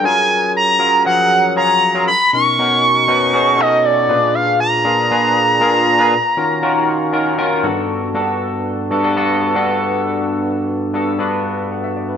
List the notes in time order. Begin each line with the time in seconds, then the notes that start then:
0.03 F#3 C#4 F4 G#4 A#4 G#5
0.57 A#5
0.79 F#3 C#4 F4 G#4 A#4
1.05 F3 F#3 C#4 G#4 A#4 F#5
1.56 F#3 C#4 F4 G#4 C#5 A#5
1.95 F#3 C#4 F4 G#4 A#4
2.08 B5
2.33 B2 C#4 D#4 F#4 A#4 C#6
2.58 B2 C#4 D#4 F#4 A#4
3.07 B2 C#4 D#4 F#4 B4
3.33 B2 C#4 D#4 F#4 G#4
3.58 B2 C#4 D#4 F#4 A4 D#5
3.85 D5
4.09 A#2 C#4 F4 G#4 B4
4.15 D4
4.35 F5
4.60 A#5
4.84 A#2 D4 F4 G#4 A#4
5.11 A#2 D4 F4 G#4 B4
5.61 A#2 D4 F4 G#4 A#4
5.99 A#2 D4 F4 G#4 B4
6.37 D#3 C#4 F4 F#4 A#4
6.62 D#3 C#4 F4 F#4 A#4
7.12 D#3 C#4 F4 F#4 A#4
7.38 D#3 C#4 F4 F#4 A#4
7.63 G2 B3 D4 F#4 A4
8.14 G2 A#3 D4 F#4 A4
8.20 B3
8.90 G2 B3 D4 F#4 A4
9.03 G2 B3 D4 F#4 A4
9.16 G2 B3 D4 F#4 A4
9.55 G2 B3 D4 F#4 A4
10.93 G2 B3 D4 F#4 A4
11.19 G2 B3 D4 F#4 B4
11.58 A5
11.72 F#5
11.84 E5
11.97 D5
12.09 B4